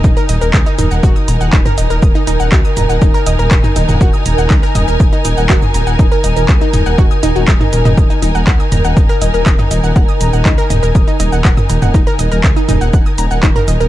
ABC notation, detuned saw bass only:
X:1
M:4/4
L:1/16
Q:1/4=121
K:Ebm
V:1 name="Detuned saw bass" clef=bass
E,,, z E,,, E,,, D,, z E,,, E,,, E,,, z E,,, E,,, E,,, z E,,, E,,, | E,,, z E,,, E,,, D,, z E,,, E,,, E,,, z E,,, E,,, E,,, z E,,, E,,, | E,,, z E,,, E,,, D,, z E,,, E,,, E,,, z E,,, E,,, E,,, z E,,, E,,, | E,,, z E,,, E,,, D,, z E,,, E,,, E,,, z E,,, E,,, E,,, z E,,, E,,, |
E,,, z E,,, E,,, D,, z E,,, E,,, E,,, z E,,, E,,, E,,, z E,,, E,,, | E,,, z E,,, E,,, D,, z E,,, E,,, E,,, z E,,, E,,, E,,, z E,,, E,,, | E,,, z E,,, E,,, D,, z E,,, E,,, E,,, z E,,, E,,, E,,, z E,,, E,,, |]